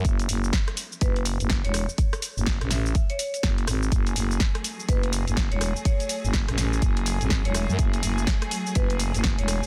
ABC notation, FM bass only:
X:1
M:4/4
L:1/16
Q:"Swing 16ths" 1/4=124
K:F#m
V:1 name="FM bass" clef=bass
F,,,2 F,,,2 z4 F,,,3 F,,,2 E,,,2 z | z3 F,,,2 A,,, A,,,2 z4 F,,,2 G,,,2 | F,,,2 F,,,2 z4 F,,,3 F,,,2 E,,,2 z | z3 F,,,2 A,,, A,,,2 F,,,3 G,,,2 E,,,2 F,, |
F,,,2 F,,,2 z4 F,,,3 F,,,2 E,,,2 z |]